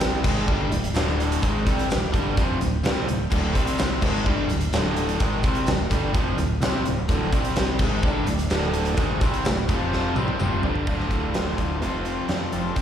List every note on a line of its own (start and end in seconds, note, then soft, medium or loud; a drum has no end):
0.00 0.21 C2 medium
0.00 0.22 C3 medium
0.00 0.23 G3 medium
0.00 0.23 C4 medium
0.00 snare loud
0.00 closed hi-hat medium
0.00 tambourine medium
0.23 0.46 G#1 medium
0.23 0.46 G#2 medium
0.23 0.46 D#3 medium
0.23 0.47 G#3 loud
0.23 kick loud
0.23 tambourine medium
0.23 crash loud
0.47 0.70 G1 loud
0.47 0.70 G2 medium
0.47 0.70 D3 medium
0.47 0.70 G3 medium
0.47 kick loud
0.47 tambourine soft
0.71 0.92 D1 medium
0.71 0.90 D2 medium
0.71 0.90 A2 medium
0.71 closed hi-hat medium
0.71 tambourine medium
0.84 closed hi-hat medium
0.94 1.38 D1 medium
0.94 1.41 D2 medium
0.94 1.41 A2 loud
0.94 1.41 D3 loud
0.94 snare loud
0.94 closed hi-hat medium
0.94 tambourine medium
1.09 snare soft
1.20 closed hi-hat medium
1.32 closed hi-hat medium
1.42 1.64 G#1 loud
1.42 1.65 G#2 loud
1.42 1.65 D#3 loud
1.42 1.65 G#3 loud
1.42 kick loud
1.42 closed hi-hat medium
1.42 tambourine medium
1.66 1.88 C2 medium
1.66 1.88 C3 medium
1.66 1.89 G3 medium
1.66 1.89 C4 loud
1.66 kick medium
1.66 closed hi-hat medium
1.66 tambourine medium
1.79 closed hi-hat medium
1.89 2.11 D1 medium
1.89 2.08 D2 medium
1.89 2.08 A2 medium
1.89 snare loud
1.89 closed hi-hat medium
1.89 tambourine loud
2.12 2.35 G1 medium
2.12 2.35 G2 medium
2.12 2.35 D3 medium
2.12 2.35 G3 loud
2.12 kick loud
2.12 closed hi-hat medium
2.37 2.59 F1 medium
2.37 2.59 F2 medium
2.37 2.60 C3 medium
2.37 2.60 F3 medium
2.37 kick loud
2.37 closed hi-hat medium
2.37 tambourine soft
2.60 2.82 D1 medium
2.60 2.79 D2 medium
2.60 2.79 A2 medium
2.60 closed hi-hat medium
2.60 tambourine medium
2.83 3.05 C2 medium
2.83 3.06 C3 medium
2.83 3.06 G3 medium
2.83 3.07 C4 medium
2.83 snare loud
2.83 closed hi-hat medium
2.83 tambourine medium
3.07 3.30 D1 medium
3.07 3.26 D2 medium
3.07 3.26 A2 medium
3.07 closed hi-hat medium
3.07 tambourine soft
3.30 3.53 D1 medium
3.30 3.54 D2 medium
3.30 3.54 A2 loud
3.30 3.54 D3 loud
3.30 kick loud
3.30 tambourine medium
3.30 crash loud
3.55 3.99 C2 medium
3.55 4.01 C3 medium
3.55 4.01 G3 medium
3.55 4.01 C4 loud
3.55 kick medium
3.55 closed hi-hat medium
3.55 tambourine medium
3.67 closed hi-hat medium
3.78 snare loud
3.78 closed hi-hat medium
3.78 tambourine medium
4.01 4.24 G#1 medium
4.01 4.24 G#2 medium
4.01 4.25 D#3 medium
4.01 4.25 G#3 medium
4.01 kick loud
4.01 tambourine medium
4.01 crash loud
4.26 4.47 G1 medium
4.26 4.48 G2 medium
4.26 4.48 D3 medium
4.26 4.49 G3 loud
4.26 kick loud
4.26 tambourine soft
4.49 4.71 D1 medium
4.49 4.68 D2 medium
4.49 4.68 A2 medium
4.49 closed hi-hat medium
4.49 tambourine medium
4.61 closed hi-hat medium
4.72 5.16 D1 loud
4.72 5.19 D2 medium
4.72 5.19 A2 loud
4.72 5.20 D3 loud
4.72 snare loud
4.72 closed hi-hat medium
4.72 tambourine medium
4.96 closed hi-hat medium
5.09 closed hi-hat medium
5.19 5.42 G#1 loud
5.19 5.43 G#2 loud
5.19 5.43 D#3 medium
5.19 5.43 G#3 loud
5.19 kick loud
5.19 closed hi-hat medium
5.19 tambourine medium
5.43 5.65 C2 medium
5.43 5.66 C3 medium
5.43 5.66 G3 medium
5.43 5.67 C4 loud
5.43 kick loud
5.43 closed hi-hat medium
5.43 tambourine medium
5.55 closed hi-hat medium
5.66 5.88 D1 medium
5.66 5.86 D2 medium
5.66 5.86 A2 medium
5.66 snare loud
5.66 closed hi-hat medium
5.66 tambourine medium
5.90 6.13 G1 medium
5.90 6.13 G2 medium
5.90 6.13 D3 medium
5.90 6.13 G3 loud
5.90 kick loud
5.90 closed hi-hat medium
5.90 tambourine medium
6.13 6.36 F1 medium
6.13 6.36 F2 medium
6.13 6.37 C3 medium
6.13 6.37 F3 medium
6.13 kick loud
6.13 closed hi-hat medium
6.13 tambourine soft
6.37 6.59 D1 medium
6.37 6.56 D2 medium
6.37 6.57 A2 medium
6.37 closed hi-hat medium
6.37 tambourine medium
6.60 6.83 C2 loud
6.60 6.84 C3 medium
6.60 6.84 G3 medium
6.60 6.85 C4 loud
6.60 snare loud
6.60 closed hi-hat medium
6.60 tambourine medium
6.84 7.06 D1 medium
6.84 7.04 D2 medium
6.84 7.04 A2 medium
6.84 closed hi-hat medium
7.08 7.30 D1 medium
7.08 7.31 D2 loud
7.08 7.31 A2 loud
7.08 7.31 D3 loud
7.08 kick loud
7.08 closed hi-hat medium
7.08 tambourine medium
7.32 7.76 C2 medium
7.32 7.79 C3 medium
7.32 7.79 G3 medium
7.32 7.79 C4 loud
7.32 kick loud
7.32 closed hi-hat medium
7.32 tambourine medium
7.45 closed hi-hat medium
7.56 snare loud
7.56 closed hi-hat medium
7.56 tambourine medium
7.79 8.01 G#1 medium
7.79 8.02 G#2 loud
7.79 8.03 D#3 medium
7.79 8.03 G#3 loud
7.79 kick loud
7.79 tambourine medium
7.79 crash loud
8.03 8.25 G1 medium
8.03 8.26 G2 medium
8.03 8.26 D3 medium
8.03 8.26 G3 loud
8.03 kick loud
8.03 tambourine soft
8.26 8.48 D1 medium
8.26 8.46 D2 medium
8.26 8.46 A2 medium
8.26 closed hi-hat medium
8.26 tambourine medium
8.39 closed hi-hat medium
8.50 8.94 D1 medium
8.50 8.97 D2 medium
8.50 8.97 A2 medium
8.50 8.97 D3 loud
8.50 snare loud
8.50 closed hi-hat medium
8.50 tambourine medium
8.63 snare soft
8.74 closed hi-hat medium
8.85 closed hi-hat medium
8.97 9.19 G#1 medium
8.97 9.20 G#2 loud
8.97 9.21 D#3 medium
8.97 9.21 G#3 loud
8.97 kick loud
8.97 closed hi-hat medium
8.97 tambourine medium
9.21 9.43 C2 medium
9.21 9.44 C3 medium
9.21 9.44 G3 medium
9.21 9.44 C4 medium
9.21 kick loud
9.21 closed hi-hat medium
9.21 tambourine medium
9.34 closed hi-hat medium
9.44 9.66 D1 medium
9.44 9.64 D2 medium
9.44 9.64 A2 medium
9.44 snare loud
9.44 closed hi-hat medium
9.44 tambourine loud
9.68 10.12 F1 medium
9.68 10.15 F2 medium
9.68 10.15 C3 medium
9.68 10.15 F3 medium
9.68 kick loud
9.68 closed hi-hat medium
9.68 tambourine medium
9.92 snare medium
9.92 tambourine soft
10.15 10.37 C2 medium
10.15 10.38 C3 medium
10.15 10.39 G3 medium
10.15 10.39 C4 loud
10.15 high tom medium
10.15 tambourine medium
10.28 high tom medium
10.39 10.61 F1 medium
10.39 10.62 F2 medium
10.39 10.62 C3 medium
10.39 10.62 F3 loud
10.39 mid tom medium
10.39 tambourine medium
10.62 10.84 G1 medium
10.62 10.86 G2 medium
10.62 10.86 D3 medium
10.62 10.86 G3 medium
10.62 floor tom loud
10.75 floor tom medium
10.87 11.05 D1 medium
10.87 11.56 D2 medium
10.87 11.56 A2 medium
10.87 11.57 D3 medium
10.87 11.56 A3 medium
10.87 11.56 F4 loud
10.87 kick loud
10.87 crash medium
11.00 snare soft
11.11 11.29 D1 medium
11.11 kick medium
11.11 closed hi-hat soft
11.34 11.53 D1 medium
11.34 snare loud
11.34 closed hi-hat medium
11.57 11.81 D1 medium
11.57 11.80 D2 medium
11.57 11.80 A2 medium
11.57 11.80 D3 medium
11.57 11.80 A3 medium
11.57 11.80 F4 medium
11.57 kick medium
11.57 closed hi-hat medium
11.81 12.18 F1 medium
11.81 12.51 F2 medium
11.81 12.51 C3 medium
11.81 12.51 F3 medium
11.81 12.52 A3 medium
11.81 12.52 C4 medium
11.81 12.51 F4 medium
11.81 closed hi-hat medium
12.05 closed hi-hat medium
12.29 12.47 F2 medium
12.29 snare medium
12.29 closed hi-hat medium
12.52 12.71 F1 medium
12.52 12.75 F2 medium
12.52 12.74 C3 medium
12.52 12.75 F3 medium
12.52 12.75 A3 medium
12.52 12.75 C4 medium
12.52 12.75 F4 medium
12.52 closed hi-hat medium
12.75 12.82 C2 medium
12.75 12.82 C3 medium
12.75 12.82 G3 medium
12.75 12.82 C4 medium
12.75 12.82 E4 medium
12.75 12.82 G4 medium
12.75 12.82 C5 medium
12.75 kick loud
12.75 closed hi-hat medium